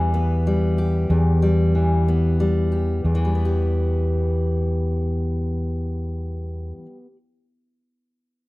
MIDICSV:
0, 0, Header, 1, 3, 480
1, 0, Start_track
1, 0, Key_signature, 1, "minor"
1, 0, Tempo, 649351
1, 810, Time_signature, 6, 3, 24, 8
1, 6271, End_track
2, 0, Start_track
2, 0, Title_t, "Steel-string acoustic guitar"
2, 0, Program_c, 0, 25
2, 0, Note_on_c, 0, 40, 58
2, 0, Note_on_c, 0, 52, 56
2, 0, Note_on_c, 0, 55, 49
2, 102, Note_on_c, 0, 59, 45
2, 343, Note_off_c, 0, 55, 0
2, 346, Note_on_c, 0, 55, 44
2, 578, Note_on_c, 0, 67, 44
2, 810, Note_off_c, 0, 40, 0
2, 813, Note_on_c, 0, 40, 55
2, 1043, Note_off_c, 0, 55, 0
2, 1052, Note_on_c, 0, 55, 45
2, 1290, Note_off_c, 0, 52, 0
2, 1293, Note_on_c, 0, 52, 46
2, 1531, Note_off_c, 0, 59, 0
2, 1540, Note_on_c, 0, 59, 45
2, 1766, Note_off_c, 0, 55, 0
2, 1775, Note_on_c, 0, 55, 41
2, 2007, Note_off_c, 0, 67, 0
2, 2010, Note_on_c, 0, 67, 37
2, 2221, Note_off_c, 0, 67, 0
2, 2222, Note_off_c, 0, 52, 0
2, 2245, Note_off_c, 0, 40, 0
2, 2254, Note_on_c, 0, 40, 43
2, 2327, Note_on_c, 0, 52, 43
2, 2393, Note_off_c, 0, 55, 0
2, 2402, Note_on_c, 0, 55, 38
2, 2468, Note_off_c, 0, 59, 0
2, 2477, Note_on_c, 0, 59, 36
2, 2551, Note_on_c, 0, 67, 37
2, 4995, Note_off_c, 0, 40, 0
2, 5068, Note_off_c, 0, 52, 0
2, 5142, Note_off_c, 0, 55, 0
2, 5218, Note_off_c, 0, 59, 0
2, 5292, Note_off_c, 0, 67, 0
2, 6271, End_track
3, 0, Start_track
3, 0, Title_t, "Fingered electric bass"
3, 0, Program_c, 1, 33
3, 0, Note_on_c, 1, 40, 62
3, 780, Note_off_c, 1, 40, 0
3, 810, Note_on_c, 1, 40, 62
3, 2220, Note_off_c, 1, 40, 0
3, 2249, Note_on_c, 1, 40, 57
3, 4961, Note_off_c, 1, 40, 0
3, 6271, End_track
0, 0, End_of_file